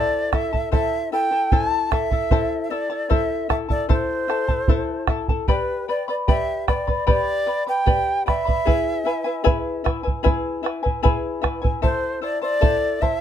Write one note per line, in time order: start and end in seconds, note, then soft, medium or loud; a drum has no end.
0.00 0.32 E4 medium
0.00 0.32 A4 medium
0.00 0.33 C5 medium
0.00 0.35 D5 loud
0.00 0.31 E5 medium
0.00 0.33 A5 medium
0.32 0.53 E4 medium
0.32 0.52 A4 medium
0.32 0.53 E5 medium
0.32 0.72 E5 medium
0.32 0.51 A5 medium
0.32 bombo rim medium
0.32 bombo low medium
0.53 0.71 E4 soft
0.53 0.72 A4 soft
0.53 0.72 A5 soft
0.53 bombo low soft
0.72 1.11 E4 medium
0.72 1.12 A4 medium
0.72 1.12 C5 medium
0.72 1.11 E5 medium
0.72 1.09 E5 medium
0.72 1.12 A5 medium
0.72 bombo low medium
1.12 1.31 E4 medium
1.12 1.31 A4 medium
1.12 1.32 E5 medium
1.12 1.53 G5 medium
1.12 1.30 A5 medium
1.31 1.51 E4 soft
1.31 1.51 A4 soft
1.31 1.52 A5 soft
1.52 1.91 E4 medium
1.52 1.91 A4 medium
1.52 1.92 C5 medium
1.52 1.91 E5 medium
1.52 1.93 A5 loud
1.52 1.92 A5 medium
1.52 bombo low medium
1.92 2.12 E4 soft
1.92 2.11 A4 medium
1.92 2.64 E5 medium
1.92 2.12 E5 medium
1.92 2.10 A5 medium
1.92 bombo rim medium
1.92 bombo low medium
2.11 2.31 E4 soft
2.11 2.31 A4 soft
2.11 2.31 A5 soft
2.11 bombo low medium
2.31 2.70 E4 medium
2.31 2.70 A4 medium
2.31 2.71 C5 medium
2.31 2.69 E5 medium
2.31 2.71 A5 medium
2.31 bombo low medium
2.64 2.72 E5 medium
2.70 2.90 E4 medium
2.70 2.90 A4 medium
2.70 3.12 D5 medium
2.70 2.91 E5 medium
2.70 2.89 A5 medium
2.90 3.09 E4 soft
2.90 3.09 A4 soft
2.90 3.09 A5 medium
3.09 3.48 E4 medium
3.09 3.49 A4 medium
3.09 3.50 C5 medium
3.09 3.48 E5 medium
3.09 3.50 E5 medium
3.09 3.49 A5 medium
3.09 bombo low medium
3.49 3.69 E4 medium
3.49 3.68 A4 medium
3.49 3.70 E5 medium
3.49 3.56 E5 medium
3.49 3.67 A5 medium
3.49 bombo rim medium
3.49 bombo low soft
3.69 3.88 E4 soft
3.69 3.88 A4 soft
3.69 3.89 D5 medium
3.69 3.89 A5 soft
3.69 bombo low medium
3.89 4.28 E4 medium
3.89 4.28 A4 medium
3.89 4.29 C5 medium
3.89 5.05 C5 medium
3.89 4.27 E5 medium
3.89 4.29 A5 medium
3.89 bombo low medium
4.28 4.49 E4 soft
4.28 4.48 A4 medium
4.28 4.49 E5 medium
4.28 4.47 A5 medium
4.28 bombo rim soft
4.48 4.68 E4 soft
4.48 4.68 A4 soft
4.48 4.69 A5 soft
4.48 bombo low medium
4.68 5.07 E4 medium
4.68 5.08 A4 medium
4.68 5.08 C5 medium
4.68 5.07 E5 medium
4.68 5.09 A5 medium
4.68 bombo low medium
5.07 5.29 E4 medium
5.07 5.28 A4 medium
5.07 5.28 E5 medium
5.07 5.28 A5 medium
5.07 bombo rim medium
5.07 bombo low medium
5.28 5.48 E4 soft
5.28 5.48 A4 soft
5.28 5.49 A5 medium
5.28 bombo low medium
5.48 5.88 G4 medium
5.48 5.87 B4 medium
5.48 5.85 B4 medium
5.48 5.88 D5 medium
5.48 5.87 G5 medium
5.48 5.88 B5 medium
5.48 bombo low medium
5.88 6.08 B4 medium
5.88 6.08 D5 medium
5.88 6.08 G5 soft
5.88 6.07 B5 medium
6.08 6.27 B4 soft
6.08 6.27 D5 soft
6.08 6.15 D5 medium
6.08 6.27 B5 medium
6.28 6.68 G4 medium
6.28 6.67 B4 medium
6.28 6.67 D5 medium
6.28 6.65 E5 medium
6.28 6.66 G5 medium
6.28 6.67 B5 medium
6.28 bombo low medium
6.68 6.87 B4 medium
6.68 7.05 D5 medium
6.68 6.87 D5 medium
6.68 6.87 G5 medium
6.68 6.86 B5 medium
6.68 bombo rim medium
6.68 bombo low medium
6.87 7.06 B4 soft
6.87 7.06 D5 soft
6.87 7.06 B5 soft
6.87 bombo low soft
7.07 7.47 G4 medium
7.07 7.45 B4 medium
7.07 7.46 D5 medium
7.07 7.64 D5 medium
7.07 7.45 G5 medium
7.07 7.46 B5 medium
7.07 bombo low medium
7.46 7.67 B4 medium
7.46 7.66 D5 medium
7.46 7.66 G5 medium
7.46 7.65 B5 medium
7.67 7.86 B4 soft
7.67 7.86 D5 soft
7.67 8.23 G5 medium
7.67 7.86 B5 soft
7.86 8.26 G4 medium
7.86 8.25 B4 medium
7.86 8.26 D5 medium
7.86 8.25 G5 medium
7.86 8.26 B5 medium
7.86 bombo low medium
8.26 8.46 B4 soft
8.26 8.45 D5 medium
8.26 9.81 E5 loud
8.26 8.46 G5 medium
8.26 8.44 B5 medium
8.26 bombo rim medium
8.26 bombo low medium
8.45 8.65 B4 soft
8.45 8.66 D5 soft
8.45 8.65 B5 medium
8.45 bombo low medium
8.65 9.04 E4 medium
8.65 9.05 G#4 medium
8.65 9.05 B4 medium
8.65 9.04 E5 medium
8.65 9.05 G#5 medium
8.65 bombo low medium
9.05 9.25 E4 medium
9.05 9.24 B4 medium
9.05 9.25 E5 medium
9.05 9.23 G#5 medium
9.24 9.43 E4 soft
9.24 9.43 B4 medium
9.24 9.43 G#5 medium
9.44 9.83 E4 medium
9.44 9.84 G#4 medium
9.44 9.84 B4 medium
9.44 9.83 E5 medium
9.44 9.84 G#5 medium
9.44 bombo low medium
9.84 10.03 E4 medium
9.84 10.03 B4 medium
9.84 10.04 E5 medium
9.84 10.02 G#5 medium
9.84 bombo rim medium
9.84 bombo low medium
10.03 10.23 E4 soft
10.03 10.23 B4 soft
10.03 10.23 G#5 medium
10.07 bombo low medium
10.23 10.62 E4 medium
10.23 10.63 G#4 medium
10.23 10.63 B4 medium
10.23 10.62 E5 medium
10.23 10.63 G#5 medium
10.23 bombo low medium
10.63 10.83 E4 medium
10.63 10.82 B4 medium
10.63 10.83 E5 medium
10.63 10.82 G#5 medium
10.63 bombo rim soft
10.83 11.02 E4 soft
10.83 11.02 B4 soft
10.83 11.02 G#5 medium
10.83 bombo low medium
11.03 11.41 E4 medium
11.03 11.43 G#4 medium
11.03 11.42 B4 loud
11.03 11.40 E5 medium
11.03 11.42 G#5 loud
11.03 bombo low medium
11.42 11.62 E4 medium
11.42 11.61 B4 medium
11.42 11.62 E5 medium
11.42 11.60 G#5 medium
11.42 bombo rim medium
11.42 bombo low medium
11.62 11.81 E4 soft
11.62 11.82 B4 soft
11.62 11.82 G#5 medium
11.62 bombo low medium
11.82 12.21 E4 medium
11.82 12.22 A4 medium
11.82 12.21 C5 medium
11.82 12.20 C5 medium
11.82 12.20 E5 medium
11.82 12.22 A5 medium
11.82 bombo low medium
12.22 12.42 E4 medium
12.22 12.41 C5 medium
12.22 12.41 D5 medium
12.22 12.42 E5 soft
12.22 12.40 A5 medium
12.42 12.61 E4 soft
12.42 12.61 C5 medium
12.42 13.03 D5 loud
12.42 12.61 A5 medium
12.61 13.00 E4 medium
12.61 13.01 A4 medium
12.61 13.01 C5 medium
12.61 13.00 E5 medium
12.61 13.01 A5 medium
12.61 bombo low medium
13.01 13.20 E4 medium
13.01 13.20 C5 medium
13.01 13.21 E5 medium
13.01 13.19 A5 medium
13.01 bombo low medium